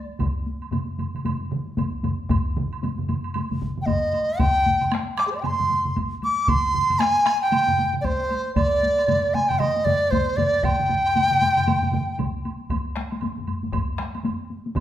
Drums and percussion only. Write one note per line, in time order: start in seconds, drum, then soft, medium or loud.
0.10 taiko high soft
0.19 taiko medium
0.19 taiko low-mid medium
0.19 taiko mid medium
0.19 taiko high medium
0.19 high woodblock soft
0.36 taiko high soft
0.47 taiko high soft
0.62 taiko high soft
0.62 high woodblock soft
0.72 taiko low-mid medium
0.72 taiko mid medium
0.72 taiko high medium
0.72 high woodblock soft
0.88 taiko high soft
0.98 taiko low-mid medium
0.98 taiko mid medium
0.98 taiko high medium
0.98 high woodblock soft
1.15 taiko low-mid medium
1.15 taiko mid medium
1.15 taiko high soft
1.15 high woodblock soft
1.25 taiko low-mid medium
1.25 taiko mid medium
1.25 taiko high medium
1.25 high woodblock soft
1.41 taiko high soft
1.51 taiko low-mid medium
1.51 taiko mid medium
1.67 taiko high soft
1.77 taiko medium
1.77 taiko low-mid medium
1.77 taiko mid medium
1.77 taiko high medium
1.77 high woodblock soft
2.04 taiko low-mid loud
2.04 taiko mid medium
2.04 taiko high medium
2.04 high woodblock soft
2.19 taiko high soft
2.29 taiko loud
2.29 taiko low-mid medium
2.29 taiko mid medium
2.29 taiko high medium
2.29 high woodblock medium
2.46 taiko high soft
2.56 taiko low-mid loud
2.56 taiko mid medium
2.56 taiko high medium
2.73 taiko high soft
2.73 high woodblock soft
2.83 taiko low-mid medium
2.83 taiko mid medium
2.83 taiko high medium
2.83 high woodblock soft
2.98 taiko low-mid medium
2.98 taiko mid medium
2.98 taiko high soft
3.09 taiko low-mid medium
3.09 taiko mid medium
3.09 taiko high medium
3.09 high woodblock soft
3.24 taiko high soft
3.24 high woodblock soft
3.34 taiko low-mid medium
3.34 taiko mid medium
3.34 taiko high medium
3.34 high woodblock medium
3.51 taiko low-mid medium
3.51 taiko mid medium
3.51 taiko high soft
3.61 taiko medium
3.61 taiko low-mid medium
3.61 taiko mid medium
3.61 taiko high medium
3.78 taiko low-mid medium
3.78 taiko mid medium
3.78 taiko high soft
3.87 taiko medium
3.87 taiko low-mid medium
3.87 taiko mid medium
3.87 taiko high medium
3.87 high woodblock soft
4.13 taiko high medium
4.13 high woodblock soft
4.29 taiko high soft
4.39 taiko loud
4.39 taiko low-mid medium
4.39 taiko mid medium
4.39 taiko high medium
4.39 high woodblock medium
4.66 taiko low-mid medium
4.66 taiko mid medium
4.66 taiko high medium
4.81 taiko low-mid medium
4.81 taiko mid medium
4.81 taiko high soft
4.81 high woodblock soft
4.91 taiko rim medium
4.91 taiko high medium
4.91 high woodblock soft
4.94 taiko rim medium
5.18 taiko rim medium
5.18 taiko high medium
5.18 high woodblock soft
5.19 taiko rim medium
5.33 taiko high soft
5.33 high woodblock soft
5.44 taiko low-mid medium
5.44 taiko mid medium
5.44 taiko high medium
5.44 high woodblock medium
5.60 taiko low-mid medium
5.60 taiko mid medium
5.60 taiko high soft
5.70 taiko low-mid medium
5.70 taiko mid medium
5.70 taiko high medium
5.85 taiko low-mid medium
5.85 taiko mid medium
5.85 taiko high soft
5.96 taiko medium
5.96 taiko high medium
5.96 high woodblock soft
6.12 taiko high soft
6.22 taiko high medium
6.22 high woodblock soft
6.38 taiko high soft
6.48 taiko medium
6.48 taiko low-mid medium
6.48 taiko mid loud
6.48 taiko high medium
6.48 high woodblock medium
6.64 taiko high soft
6.74 taiko low-mid medium
6.74 taiko mid medium
6.74 taiko high soft
6.90 taiko low-mid medium
6.90 taiko mid medium
6.90 taiko high soft
6.90 high woodblock soft
7.00 taiko rim medium
7.00 taiko high medium
7.00 high woodblock soft
7.15 taiko high soft
7.26 taiko rim medium
7.26 taiko high medium
7.26 high woodblock soft
7.41 taiko high soft
7.41 high woodblock soft
7.52 taiko low-mid medium
7.52 taiko mid medium
7.52 taiko high medium
7.52 high woodblock medium
7.67 taiko low-mid medium
7.67 taiko mid medium
7.67 taiko high soft
7.78 taiko low-mid medium
7.78 taiko mid medium
7.78 taiko high medium
7.93 taiko low-mid medium
7.93 taiko mid medium
8.04 taiko medium
8.04 taiko high medium
8.04 high woodblock soft
8.20 taiko high soft
8.31 taiko high medium
8.31 high woodblock soft
8.46 taiko high soft
8.56 taiko medium
8.56 taiko low-mid medium
8.56 taiko mid medium
8.56 taiko high medium
8.56 high woodblock medium
8.83 taiko high medium
8.98 taiko high soft
8.98 high woodblock soft
9.08 taiko low-mid loud
9.08 taiko mid loud
9.08 taiko high medium
9.08 high woodblock soft
9.34 taiko low-mid medium
9.34 taiko mid medium
9.34 taiko high medium
9.34 high woodblock soft
9.50 taiko low-mid medium
9.50 taiko mid medium
9.50 high woodblock soft
9.60 taiko low-mid medium
9.60 taiko mid loud
9.60 taiko high medium
9.60 high woodblock medium
9.76 taiko high soft
9.86 taiko low-mid medium
9.86 taiko mid loud
9.86 taiko high medium
10.02 taiko high soft
10.11 taiko medium
10.11 taiko low-mid loud
10.11 taiko mid medium
10.11 taiko high medium
10.11 high woodblock soft
10.28 taiko high soft
10.37 taiko low-mid loud
10.37 taiko mid loud
10.37 taiko high medium
10.37 high woodblock soft
10.54 taiko high soft
10.63 taiko loud
10.63 taiko low-mid medium
10.63 taiko mid medium
10.63 taiko high medium
10.63 high woodblock medium
10.79 taiko low-mid medium
10.79 taiko mid medium
10.89 taiko low-mid medium
10.89 taiko mid medium
10.89 taiko high medium
11.05 taiko high soft
11.05 high woodblock soft
11.15 taiko low-mid medium
11.15 taiko mid medium
11.15 taiko high medium
11.15 high woodblock soft
11.31 taiko low-mid medium
11.31 taiko mid medium
11.31 taiko high soft
11.41 taiko low-mid medium
11.41 taiko mid medium
11.41 taiko high medium
11.41 high woodblock soft
11.57 taiko low-mid medium
11.57 taiko mid medium
11.57 taiko high soft
11.57 high woodblock soft
11.67 taiko low-mid medium
11.67 taiko mid loud
11.67 taiko high medium
11.67 high woodblock medium
11.82 taiko low-mid medium
11.82 taiko mid medium
11.82 taiko high soft
11.92 taiko low-mid loud
11.92 taiko mid loud
11.92 taiko high medium
12.09 taiko high soft
12.18 taiko medium
12.18 taiko low-mid loud
12.18 taiko mid medium
12.18 taiko high medium
12.18 high woodblock soft
12.45 taiko high medium
12.45 high woodblock soft
12.61 taiko high soft
12.70 taiko medium
12.70 taiko low-mid medium
12.70 taiko high medium
12.70 high woodblock medium
12.96 taiko rim medium
12.96 taiko high soft
13.11 taiko high medium
13.11 high woodblock soft
13.21 taiko low-mid medium
13.21 taiko high medium
13.21 high woodblock soft
13.38 taiko low-mid medium
13.47 taiko low-mid medium
13.47 taiko high medium
13.47 high woodblock soft
13.63 taiko low-mid medium
13.63 taiko high soft
13.72 taiko loud
13.72 taiko low-mid medium
13.72 taiko high medium
13.72 high woodblock medium
13.98 taiko rim medium
13.98 taiko high medium
13.98 high woodblock soft
14.15 taiko high medium
14.15 high woodblock soft
14.24 taiko low-mid medium
14.24 taiko high medium
14.24 high woodblock soft
14.50 taiko high soft
14.66 taiko high medium
14.75 taiko loud
14.75 taiko mid medium
14.75 taiko high medium
14.75 high woodblock medium